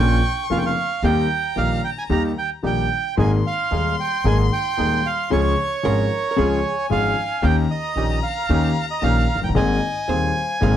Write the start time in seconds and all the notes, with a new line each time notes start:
Already playing: A#1 A#2 C#3 F3 A#3 C#4 F4 C#6
0.00 G5
0.50 F1 F2 C#3 F3 A#3 C#4 F4 F5
0.58 G5
0.66 F5
1.02 D#2 D#3 G3 A#3 D#4 G4 G5 A#5
1.56 A#1 A#2 D#3 G3 A#3 D#4 G4 F5
1.84 G5
1.98 G#5
2.10 D#2 D#3 G3 A#3 D#4 G4 A#5
2.38 G5
2.63 A#1 A#2 D#3 G3 A#3 D#4 G4 G5
3.17 G#1 G#2 D#3 G#3 A#3 D#4 G#4 G#5 C6
3.47 F5
3.71 D#1 D#2 D#3 G#3 A#3 D#4 G#4
4.00 G5
4.24 G#1 G#2 D#3 G#3 A#3 D#4 G#4 G#5
4.53 G5
4.77 D#1 D#2 D#3 G#3 A#3 D#4 G#4
5.06 F5
5.30 C#2 C#3 F3 G#3 C#4 F4 G#4 C#5 C#6
5.83 G#1 G#2 F3 G#3 C#4 F4 G#4 A#4 A#5
6.31 A#4
6.36 C#2 C#3 F3 G#3 C#4 F4 G#4 G#5
6.66 G#5
6.90 G#1 G#2 F3 G#3 C#4 F4 G#4 F5
7.42 D#2 D#3 A#3 C#4 D#4 G4 G5 A#5
7.71 D#5
7.96 A#1 A#2 D#3 A#3 C#4 D#4 G4
8.23 F5
8.49 D#2 D#3 A#3 C#4 D#4 G4
8.91 D#5
9.01 A#1 A#2 D#3 A#3 C#4 D#4 G4 F5
9.35 F1
9.41 F#1 G5
9.48 G1
9.54 G#1 G#2 D#3 A#3 C4 G#4 D#5 G#5
10.08 D#1 D#2 D#3 A#3 C4 G#4 C5 F5
10.61 G#1 G#2 D#3 A#3 C4 G#4 D#5 F5